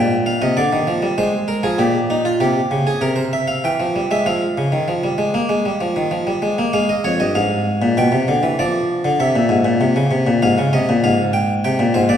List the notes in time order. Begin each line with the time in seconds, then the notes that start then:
Already playing: A#2 G5
0.26 F5
0.42 C3 D#5
0.57 D3 D5
0.73 D#3
0.87 F3
1.02 G3
1.18 G#3 C5
1.48 A#4
1.63 F3 G#4
1.78 A#2 G4
2.10 D#4
2.25 F4
2.40 C3 G4
2.71 C#3
2.87 G#4
3.01 C3 A#4
3.16 C5
3.33 E5
3.48 F5
3.64 E3 G5
3.80 F3
3.96 G3
4.11 G#3 E5
4.26 F3 F5
4.58 C#3
4.72 D#3
4.88 F3
5.04 G3
5.18 G#3
5.34 A#3
5.49 G#3
5.66 G3
5.81 F3
5.96 D#3
6.11 F3
6.27 G3
6.42 G#3
6.58 A#3
6.73 G#3 F5
6.89 D#5
7.04 F2 C#5
7.20 G2 D#5
7.35 G#2 F5
7.82 A#2
7.97 B2 G5
8.12 C3
8.28 D3
8.43 E3
8.59 F3 D5
9.05 D3
9.20 C3 E5
9.36 A#2
9.49 G#2
9.65 A#2
9.81 C3
9.96 C#3
10.11 C3
10.27 A#2
10.42 G#2 F5
10.58 C#3
10.73 C3 D#5
10.89 A#2
11.04 G#2 F5
11.33 G5
11.64 C3 G5
11.79 A#2
11.94 G#2 C5
12.09 A#2 D5